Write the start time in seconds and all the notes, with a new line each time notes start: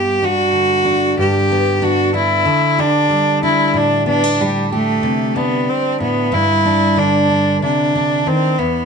Already playing: G2 B3 G4
0.22 D4 F#4
0.53 D3
0.85 D4
1.18 G2 G4
1.51 B3
1.82 D4 F#4
2.14 D4 E4
2.46 D3
2.79 D4 G4
3.10 G3
3.43 D4 E4
3.67 E4
3.74 A2 D4
4.06 B3 D4
4.24 D4
4.41 G3 G4
4.72 A3 G4
5.03 C3
5.36 B3 D4
5.69 C4
6.00 A2 B3
6.32 G2 E4
6.65 D4
6.96 D3 D4
7.30 D4
7.62 C3 D4
7.95 D4
8.26 D#3 C4
8.58 E2 B3